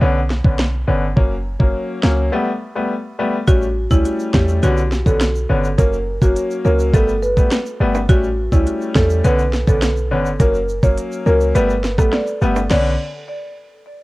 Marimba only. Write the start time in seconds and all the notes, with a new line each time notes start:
3.47 F#4
3.91 E4
4.34 G4
4.63 F#4
5.06 A4
5.78 A#4
6.21 F#4
6.65 A#4
6.94 A4
7.22 B4
8.09 F#4
8.52 E4
8.96 A4
9.24 B4
9.68 A4
10.40 A#4
10.83 C#5
11.26 A#4
11.55 B4
11.98 A4
12.13 D5
12.71 D5